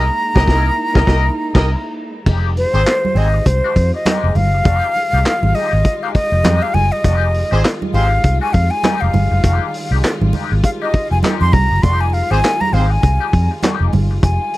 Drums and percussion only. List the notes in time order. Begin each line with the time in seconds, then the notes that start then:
0.36 kick, snare
0.48 kick, snare
0.95 kick, snare
1.07 kick, snare
1.55 kick, snare, crash
2.26 kick, crash, muted conga, low conga
2.57 open hi-hat, muted conga
2.87 snare, clap, closed hi-hat, muted conga
3.05 high conga
3.16 open hi-hat, muted conga
3.46 kick, closed hi-hat
3.76 kick, open hi-hat
4.06 snare, clap, closed hi-hat, muted conga, high conga
4.35 open hi-hat, high conga, low conga
4.65 kick, closed hi-hat, low conga
4.96 open hi-hat, muted conga
5.26 snare, clap, closed hi-hat, muted conga
5.43 high conga
5.55 open hi-hat
5.85 kick, closed hi-hat
6.14 kick, open hi-hat, muted conga
6.44 snare, clap, closed hi-hat, muted conga, high conga
6.74 open hi-hat, high conga, low conga
7.04 kick, closed hi-hat, muted conga, low conga
7.34 open hi-hat
7.65 snare, clap, closed hi-hat
7.82 high conga
7.94 open hi-hat, muted conga
8.24 kick, closed hi-hat, muted conga
8.54 kick, open hi-hat, muted conga
8.83 snare, clap, closed hi-hat, muted conga, high conga
9.13 open hi-hat, muted conga, high conga, low conga
9.43 kick, closed hi-hat, low conga
9.74 open hi-hat
10.04 snare, clap, closed hi-hat, muted conga
10.22 high conga
10.33 open hi-hat, muted conga, low conga
10.63 kick, closed hi-hat
10.93 kick, open hi-hat
11.23 snare, clap, closed hi-hat, muted conga, high conga
11.53 kick, open hi-hat, muted conga, high conga, low conga
11.83 kick, closed hi-hat, low conga
12.14 open hi-hat
12.43 snare, clap, closed hi-hat, muted conga
12.61 high conga
12.74 open hi-hat
13.03 kick, closed hi-hat, muted conga
13.33 kick, open hi-hat
13.63 snare, clap, closed hi-hat, muted conga, high conga
13.92 open hi-hat, muted conga, high conga, low conga
14.23 kick, closed hi-hat, muted conga, low conga
14.54 open hi-hat